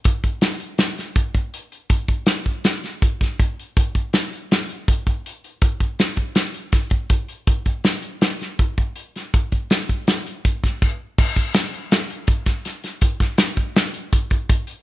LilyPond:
\new DrumStaff \with { instrumentName = "Drums" } \drummode { \time 5/4 \tempo 4 = 162 <hh bd>8 <hh bd>8 <hh sn>8 hh8 <hh sn>8 <hh sn>8 <hh bd>8 <hh bd>8 hh8 hh8 | <hh bd>8 <hh bd>8 <hh sn>8 <hh bd>8 <hh sn>8 <hh sn>8 <hh bd>8 <hh bd sn>8 <hh bd>8 hh8 | <hh bd>8 <hh bd>8 <hh sn>8 hh8 <hh sn>8 hh8 <hh bd>8 <hh bd>8 hh8 hh8 | <hh bd>8 <hh bd>8 <hh sn>8 <hh bd>8 <hh sn>8 hh8 <hh bd sn>8 <hh bd>8 <hh bd>8 hh8 |
<hh bd>8 <hh bd>8 <hh sn>8 hh8 <hh sn>8 <hh sn>8 <hh bd>8 <hh bd>8 hh8 <hh sn>8 | <hh bd>8 <hh bd>8 <hh sn>8 <hh bd>8 <hh sn>8 hh8 <hh bd>8 <hh bd sn>8 <cymc bd>4 | <cymc bd>8 <hh bd>8 <hh sn>8 hh8 <hh sn>8 hh8 <hh bd>8 <hh bd sn>8 <hh sn>8 <hh sn>8 | <hh bd>8 <hh bd sn>8 <hh sn>8 <hh bd>8 <hh sn>8 hh8 <hh bd>8 <hh bd>8 <hh bd>8 hh8 | }